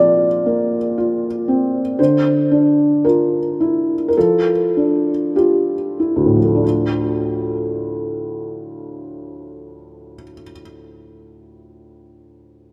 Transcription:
0.00 2.00 A#2 soft
0.00 0.76 F3 soft
0.00 0.46 A#3 soft
0.00 0.26 C4 soft
0.00 0.98 F4 soft
0.00 2.01 A#4 medium
0.00 1.99 C5 medium
0.00 1.99 D5 medium
0.46 1.27 A#3 soft
0.98 1.79 F4 soft
1.48 1.99 C4 soft
1.99 4.12 D3 soft
1.99 3.04 C5 medium
2.51 3.37 D4 soft
3.05 3.93 F4 soft
3.05 4.07 A#4 soft
3.60 4.51 E4 soft
4.08 4.16 A#4 soft
4.17 5.11 F3 soft
4.17 5.35 A4 soft
4.77 5.74 D4 soft
5.36 6.38 F4 soft
5.36 6.64 G4 soft
6.00 6.64 E4 soft
6.16 10.13 D2 soft
6.26 10.23 A2 soft
6.35 10.32 F3 soft
6.45 10.42 A3 soft
6.55 10.52 D4 soft
6.64 10.61 F4 soft

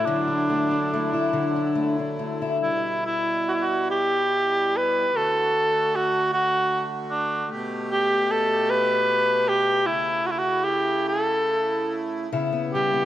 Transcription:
0.00 0.49 A3 medium
0.00 0.15 C#4 medium
0.00 0.31 E4 medium
0.00 2.57 E4 medium
0.05 2.59 D3 medium
0.05 1.32 D3 medium
0.05 2.59 F#3 medium
0.05 1.74 D4 medium
0.28 0.69 D4 soft
0.50 0.91 A3 medium
0.71 1.54 D4 soft
0.94 1.74 A3 medium
1.13 2.41 E4 soft
1.33 2.70 D3 medium
1.56 1.98 D4 soft
1.75 2.18 A3 soft
1.99 2.71 D4 soft
2.19 2.71 A3 soft
2.42 3.21 E4 soft
2.60 5.10 B2 medium
2.60 5.10 G3 medium
2.60 5.10 E4 medium
2.60 3.02 E4 medium
3.06 3.50 E4 medium
3.49 3.63 E4 medium
3.49 3.53 F#4 medium
3.62 3.90 F#4 medium
3.91 4.78 G4 medium
4.77 5.18 B4 loud
5.13 7.49 D3 medium
5.13 12.31 A3 medium
5.13 7.50 F#4 medium
5.13 5.97 A4 medium
5.95 6.32 F#4 medium
6.33 6.82 F#4 loud
7.10 7.48 D4 medium
7.51 9.86 B2 medium
7.51 9.85 G4 medium
7.92 8.33 G4 loud
8.31 8.72 A4 medium
8.70 9.50 B4 loud
9.49 9.88 G4 medium
9.86 13.05 C#3 medium
9.86 10.27 E4 medium
9.86 13.05 E4 medium
10.26 10.32 F#4 medium
10.31 10.40 E4 medium
10.38 10.65 F#4 medium
10.64 11.07 G4 medium
11.08 11.98 A4 medium
12.32 13.05 C#3 medium
12.32 13.05 B3 medium
12.32 13.05 E4 medium
12.53 12.92 B3 soft
12.74 13.05 G3 medium
12.74 13.05 G4 medium
12.93 13.05 B3 soft

